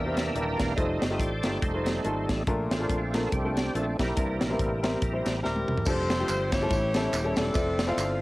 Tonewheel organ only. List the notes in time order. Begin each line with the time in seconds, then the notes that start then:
Already playing: E3 A#3 D4 G4 A#4 E5
0.59 F5
0.75 G3 A3 D#4 A4 C5 D#5
1.19 A4 D5
1.61 G3 A3 D#4 A4 C5
2.71 A3 C4 D4 F4
3.27 A4
3.32 D4 G4
3.75 A3 C4 D4 A4
4.00 E4 G4 A#4
4.17 E3 A#3 D4
5.86 F3 A3 D4 G4
6.70 E3 C#4
7.55 C4 D4 E4 F4